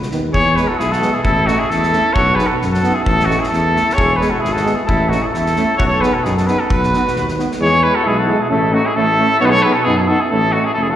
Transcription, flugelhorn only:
0.33 G#4
0.56 G#4
0.69 F#4
0.79 E4
0.91 F#4
1.12 E4
1.22 E4
1.47 D#4
1.58 E4
1.69 E4
2.14 F#4
2.35 G#4
2.47 F#4
2.58 F#4
2.70 F#4
2.94 E4
3.04 E4
3.27 D#4
3.39 E4
3.49 E4
3.95 G#4
4.18 G#4
4.29 F#4
4.39 E4
4.52 F#4
4.75 E4
4.86 E4
5.09 D#4
5.23 E4
5.28 F#4
5.33 E4
5.78 F#4
5.86 A4
5.91 A4
6.01 G#4
6.14 F#4
6.24 D#4
6.38 F#4
6.47 G#4
6.61 F#4
6.71 F#4
7.62 G#4
7.83 G#4
7.95 F#4
8.03 E4
8.17 F#4
8.39 E4
8.49 E4
8.72 D#4
8.85 E4
8.95 E4
9.42 F#4
9.47 G#4
9.53 A4
9.65 G#4
9.77 F#4
9.85 D#4
9.99 F#4
10.03 E4
10.09 F#4
10.19 E4
10.29 E4
10.52 D#4
10.66 E4
10.76 E4
10.83 E4
10.90 F#4

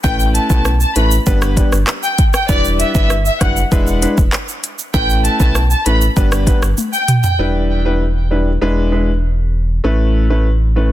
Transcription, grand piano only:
0.04 A3 C#4 E4 B4
0.50 A3 C#4 E4 B4
0.96 A3 C#4 E4 B4
1.26 G3 B3 D4 B4
1.57 G3 B3 D4 B4
2.49 G3 D4 E4 B4
2.95 G3 D4 E4 B4
3.41 G3 D4 E4 B4
3.72 G#3 D4 E4 B4
4.02 G#3 D4 E4 B4
4.94 A3 C#4 E4 B4
5.40 A3 C#4 E4 B4
5.86 A3 C#4 E4 B4
6.16 G3 B3 D4 B4
6.47 G3 B3 D4 B4
7.39 G3 D4 E4 B4
7.85 G3 D4 E4 B4
8.31 G3 D4 E4 B4
8.61 G#3 D4 E4 B4
8.92 G#3 D4 E4 B4
9.84 A3 C#4 E4 B4
10.30 A3 C#4 E4 B4
10.76 A3 C#4 E4 B4

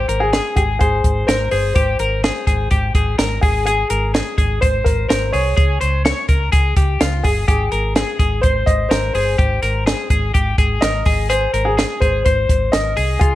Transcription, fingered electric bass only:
0.09 G#1
0.57 G#1
0.81 G#1
1.04 G#1
1.28 G#1
1.52 G1
1.76 G#1
2.00 G#1
2.47 G#1
2.71 G#1
2.95 G#1
3.19 G#1
3.43 G#1
3.90 G#1
4.38 G#1
4.62 G#1
4.86 G#1
5.10 G#1
5.34 C2
5.58 C#2
5.82 C#2
6.29 C#2
6.53 C#2
6.77 C#2
7.01 C#2
7.25 G1
7.49 G#1
7.72 G#1
8.19 G#1
8.44 G#1
8.67 G#1
8.91 G#1
9.15 G1
9.39 G#1
9.63 G#1
10.10 G#1
10.35 G#1
10.58 G#1
10.82 G#1
11.06 G#1
11.54 G#1
12.02 G#1
12.26 G#1
12.49 G#1
12.73 G#1
12.97 C2
13.21 C#2

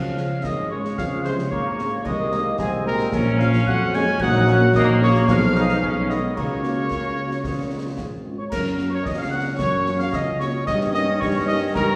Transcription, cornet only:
Already playing: F5
0.44 D#5
0.71 C#5
0.99 F5
1.25 C5
1.51 C#5
2.06 D#5
2.59 G#4
2.87 A#4
3.40 F5
3.68 F#5
3.95 G#5
4.22 F#5
4.76 D#5
5.03 C#5
5.29 F5
6.10 D#5
6.36 C#5
8.40 C#5
8.52 A#4
8.95 C#5
9.08 D#5
9.21 F5
9.34 F#5
9.62 C#5
10.02 F5
10.16 D#5
10.41 C#5
10.67 D#5
10.95 D#5
11.22 C#5
11.48 D#5
11.76 A#4

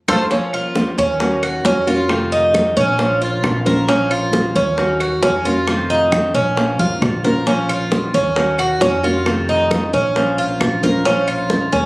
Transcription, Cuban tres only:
0.08 F4 A4 C5
0.31 C#4
0.54 F4
0.98 C#4
1.43 F#4
1.65 C#4
1.87 F4
2.32 D#4
2.77 C#4
3.22 F4
3.66 A#4
3.89 C#4
4.11 F4
4.56 C#4
5.00 F#4
5.23 C#4
5.45 F4
5.90 D#4
6.35 C#4
6.79 F4
7.24 A#4
7.47 C#4
7.69 F4
8.14 C#4
8.59 F#4
8.82 C#4
9.04 F4
9.49 D#4
9.94 C#4
10.38 F4
10.83 A#4
11.05 C#4
11.28 F4
11.72 C#4

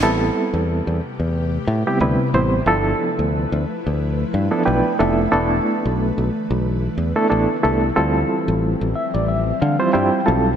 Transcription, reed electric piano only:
0.03 G3 B3 C4 E4 A4
1.87 G3 B3 C4 E4 G4
2.01 G3 B3 C4 E4 B4
2.34 G3 B3 C4 E4 C5
2.67 F3 B3 D4 E4 A4
4.51 F3 B3 D4 E4 A4
4.65 F3 B3 D4 E4 B4 G5
4.99 F3 B3 D4 E4 A4 E5
5.32 A3 B3 D4 E4 A4
7.16 A3 B3 D4 E4 A4
7.30 A3 B3 D4 E4 A4
7.63 A3 B3 D4 E4 A4
7.96 G3 C4 E4 F4 A4
8.96 E5
9.14 D5
9.28 E5
9.62 F5
9.79 G3 C4 E4 F4 C5
9.93 G3 C4 E4 F4 C5 G5
10.26 G3 C4 E4 F4 A4 A5

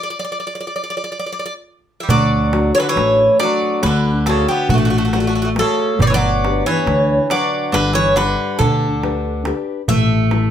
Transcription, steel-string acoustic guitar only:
2.10 D3
2.52 D4 F#4 A4
2.97 A3
3.40 D4 F#4 A4
3.84 D3
4.27 D4 F#4 A4
4.71 A3
5.15 F#4 A4 D5
5.58 A3 F#4 A4
6.01 B3
6.44 D4 G4 B4
6.87 D3
7.31 D4 B4 G5
7.73 G3
8.17 D4 G4 B4
8.60 D3
9.03 D4 G4 B4
9.46 D4 G4 B4
9.89 A3
10.32 E4 A4 E5

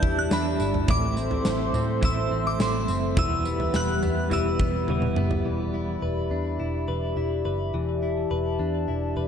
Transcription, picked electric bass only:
0.03 E2
0.31 E2
0.60 G1
0.88 A1
1.46 A1
1.74 A2
2.02 A1
2.31 A1
2.60 A1
2.89 F#1
3.17 E1
3.74 E1
4.02 E2
4.31 E1
4.60 E1
4.88 E1
5.17 F#1
5.45 E1
6.02 E1
6.31 E2
6.59 E1
6.88 E1
7.17 E1
7.45 F#1
7.74 E1
8.31 E1
8.60 E2
8.88 E1
9.17 E1

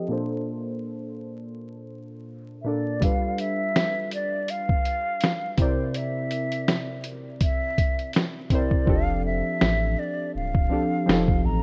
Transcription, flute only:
2.62 E5
2.68 D5
3.04 F5
3.41 E5
4.14 D5
4.50 F5
5.60 C5
5.97 E5
7.43 E5
8.53 D5
8.89 F5
9.26 E5
9.99 D5
10.36 F5
11.45 A#5

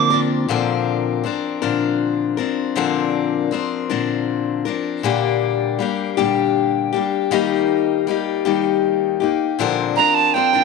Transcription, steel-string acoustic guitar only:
Already playing: F3 C4 D4
0.10 F3 C4 D4 A#4
0.49 A#2 D3 F3 C4 D4 A#4
1.24 F3 C4 D4 A#4
1.62 A#2 D3 F3 C4 D4 A#4
2.37 F3 C4 D4 A#4
2.75 A#2 D3 F3 C4 D4 A#4
3.51 F3 C4 D4 A#4
3.90 A#2 D3 F3 C4 D4 A#4
4.65 F3 C4 D4 A#4
5.03 A#2 D3 G3 A#3 D4 G4
5.79 G3 A#3 D4 G4
6.17 A#2 D3 G3 A#3 D4 G4
6.93 G3 A#3 D4 G4
7.31 D#3 G3 A#3 D#4 G4
8.07 G3 A#3 D#4 G4
8.45 D#3 G3 A#3 D#4 G4
9.20 A#3 D#4 G4
9.59 A#2 D3 F3 C4 D4 A#4
9.96 F3 C4 D4 A#4
10.34 F3 C4 D4 A#4
10.53 F3 C4 D4 A#4

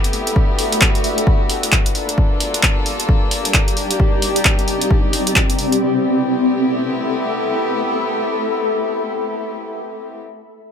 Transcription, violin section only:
Already playing: B3 C4 E4 G4
0.36 D4 F#4
1.95 A#3 F4 A4
3.77 D#4 G4
5.81 B3 C4 E4 G4

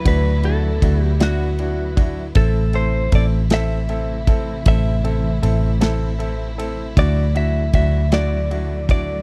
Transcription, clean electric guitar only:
0.08 B4
0.45 A4
1.03 G4
1.23 F#4
2.37 A4
2.75 C5
3.15 D5
3.54 E5
4.68 E5
6.99 D5
7.37 E5
7.75 E5
8.14 D5
8.91 D5

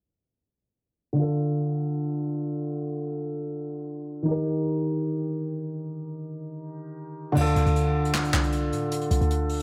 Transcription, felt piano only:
1.13 D3 D4
1.19 F4 A4
4.22 D#3 D#4
4.28 G4 A#4
7.32 D3 D4
7.38 F4 A4

